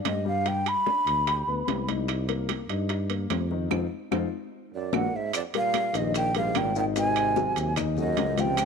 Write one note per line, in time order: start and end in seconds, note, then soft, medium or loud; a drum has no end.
0.00 0.18 D4 medium
0.00 0.18 D5 medium
0.04 0.73 G2 medium
0.04 0.25 D#5 medium
0.04 high bongo soft
0.04 low bongo medium
0.04 high conga medium
0.04 high timbale medium
0.04 low timbale medium
0.04 claves medium
0.25 0.42 G3 medium
0.25 0.42 G4 medium
0.25 0.49 F5 medium
0.25 high bongo soft
0.25 high conga soft
0.46 0.79 G3 medium
0.46 0.79 G4 medium
0.46 0.70 G5 medium
0.46 high bongo medium
0.46 high conga soft
0.46 high timbale medium
0.66 1.89 B5 loud
0.66 high bongo soft
0.66 high conga soft
0.66 high timbale medium
0.66 claves medium
0.86 1.20 D4 medium
0.86 1.20 D5 medium
0.86 high bongo soft
0.86 high conga medium
0.86 low timbale medium
1.06 1.44 D2 medium
1.06 high bongo soft
1.06 high conga soft
1.06 high timbale medium
1.27 1.44 G4 medium
1.27 1.44 G5 medium
1.27 high bongo medium
1.27 high conga soft
1.27 high timbale medium
1.27 claves medium
1.47 1.66 D2 medium
1.47 1.81 B3 medium
1.47 1.81 B4 medium
1.47 high conga soft
1.67 2.63 C2 medium
1.67 high bongo soft
1.67 low bongo medium
1.67 high conga medium
1.67 high timbale medium
1.67 low timbale medium
1.88 2.21 D#4 medium
1.88 2.22 D#5 medium
1.88 high bongo soft
1.88 high conga medium
1.88 high timbale medium
2.08 high bongo medium
2.08 high conga soft
2.08 high timbale medium
2.08 claves medium
2.28 2.62 A#3 medium
2.28 2.62 A#4 medium
2.28 high bongo soft
2.28 high conga soft
2.28 high timbale medium
2.49 high bongo soft
2.49 high conga medium
2.49 high timbale medium
2.49 low timbale medium
2.49 claves soft
2.69 3.26 G2 medium
2.69 3.03 D#4 medium
2.69 3.03 D#5 medium
2.69 high bongo soft
2.69 high conga soft
2.69 high timbale medium
2.89 high bongo medium
2.89 high conga soft
2.89 high timbale medium
3.10 3.43 A#3 medium
3.10 3.44 A#4 medium
3.10 high conga soft
3.10 high timbale medium
3.30 3.68 F2 medium
3.30 high bongo soft
3.30 low bongo medium
3.30 high conga medium
3.30 high timbale medium
3.30 low timbale medium
3.30 claves medium
3.51 3.68 D#3 medium
3.51 3.68 D#4 medium
3.51 high bongo soft
3.51 high conga soft
3.71 3.86 F2 medium
3.71 3.84 C4 medium
3.71 3.84 D#4 medium
3.71 3.84 F4 medium
3.71 high bongo medium
3.71 high conga medium
3.71 high timbale medium
3.71 claves loud
4.11 4.27 F2 medium
4.11 4.25 C4 medium
4.11 4.25 D#4 medium
4.11 4.25 F4 medium
4.11 high bongo medium
4.11 high conga loud
4.11 high timbale medium
4.11 claves medium
4.73 4.95 F#2 medium
4.73 4.96 D5 medium
4.92 5.08 A#1 medium
4.92 5.16 A#2 medium
4.92 5.06 A#3 medium
4.92 5.06 D4 medium
4.92 5.06 F#4 medium
4.92 5.17 F#5 medium
4.92 high bongo medium
4.92 high conga medium
4.92 high timbale medium
4.92 claves medium
5.14 5.33 G#2 medium
5.14 5.35 E5 medium
5.33 5.43 F2 medium
5.33 5.41 D5 medium
5.33 high bongo medium
5.33 high conga soft
5.33 high timbale medium
5.33 claves medium
5.33 maracas loud
5.54 5.96 A#2 medium
5.54 5.87 G3 medium
5.54 5.88 G4 medium
5.54 5.88 A#4 medium
5.54 5.98 F5 loud
5.54 high bongo soft
5.54 high conga soft
5.54 high timbale medium
5.54 maracas soft
5.74 high bongo medium
5.74 high conga medium
5.74 high timbale medium
5.74 low timbale medium
5.74 claves medium
5.74 maracas soft
5.94 6.51 A#1 medium
5.94 6.14 G2 medium
5.94 6.28 D#3 medium
5.94 6.28 D#4 medium
5.94 6.28 D#5 medium
5.94 6.16 D#5 medium
5.94 high bongo soft
5.94 high conga soft
5.94 high timbale medium
5.94 maracas medium
6.14 6.34 A#2 medium
6.14 6.35 G5 loud
6.14 high bongo medium
6.14 high conga soft
6.14 high timbale medium
6.14 maracas medium
6.35 6.57 G#2 medium
6.35 6.69 G3 medium
6.35 6.69 G4 medium
6.35 6.69 A#4 medium
6.35 6.59 F5 medium
6.35 high conga soft
6.35 high timbale medium
6.35 maracas soft
6.54 7.50 G#1 medium
6.54 6.75 A#2 medium
6.54 6.77 G5 medium
6.54 high bongo soft
6.54 low bongo medium
6.54 high conga medium
6.54 high timbale medium
6.54 low timbale medium
6.54 claves medium
6.54 maracas soft
6.75 6.85 A#2 medium
6.75 6.92 D#3 medium
6.75 6.93 D#4 medium
6.75 6.93 D#5 medium
6.75 6.85 G5 loud
6.75 high bongo soft
6.75 maracas medium
6.96 7.73 C3 medium
6.96 7.30 D#3 medium
6.96 7.30 D#4 medium
6.96 7.30 D#5 medium
6.96 7.74 G#5 loud
6.96 high bongo medium
6.96 high conga soft
6.96 high timbale medium
6.96 maracas medium
7.16 high bongo soft
7.16 high conga soft
7.16 high timbale medium
7.16 claves medium
7.16 maracas soft
7.36 7.69 F#3 medium
7.36 7.70 F#4 medium
7.36 7.70 G#4 medium
7.36 high bongo medium
7.36 high conga medium
7.36 low timbale medium
7.36 maracas soft
7.56 8.13 D#2 medium
7.56 high bongo soft
7.56 high conga soft
7.56 high timbale medium
7.56 maracas medium
7.76 7.93 D#3 medium
7.76 7.94 D#4 medium
7.76 7.94 D#5 medium
7.76 high bongo medium
7.76 high conga soft
7.76 low conga medium
7.76 high timbale medium
7.76 claves medium
7.76 maracas medium
7.97 8.41 F#2 medium
7.97 8.30 F#3 medium
7.97 8.31 F#4 medium
7.97 8.31 G#4 medium
7.97 8.41 D#5 medium
7.97 high conga soft
7.97 low conga medium
7.97 maracas soft
8.16 8.65 C#2 medium
8.16 high bongo soft
8.16 low bongo medium
8.16 high conga medium
8.16 high timbale medium
8.16 low timbale medium
8.16 maracas soft
8.37 8.65 C3 medium
8.37 8.65 F3 medium
8.37 8.65 F4 medium
8.37 8.65 F5 medium
8.37 8.65 G5 loud
8.37 high bongo soft
8.37 high conga medium
8.37 high timbale medium
8.37 maracas medium
8.57 high bongo medium
8.57 high conga soft
8.57 high timbale medium
8.57 claves medium
8.57 maracas medium